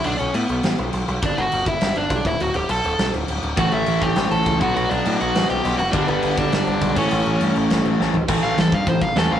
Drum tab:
CC |xxxxxxxx|xxxxxxxx|xxxxxxxx|xxxxxxxx|
SD |----o---|----o---|----o---|----o---|
FT |--------|--------|--------|--------|
BD |--------|o--o--oo|--------|o--o--oo|

CC |xxxxxxxx|xxxxxxxx|xxxxxx--|x-x-x-x-|
SD |----o---|----o---|----o-o-|--o---o-|
FT |--------|--------|-------o|--------|
BD |--------|o--o--oo|--------|o--ooo--|